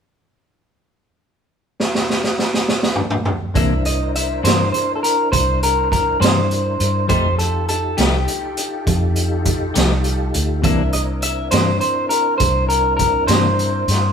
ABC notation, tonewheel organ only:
X:1
M:12/8
L:1/8
Q:3/8=68
K:Cmix
V:1 name="Tonewheel organ"
z12 | [DEBc]12 | [_EFGA]12 | [CDEB]12 |]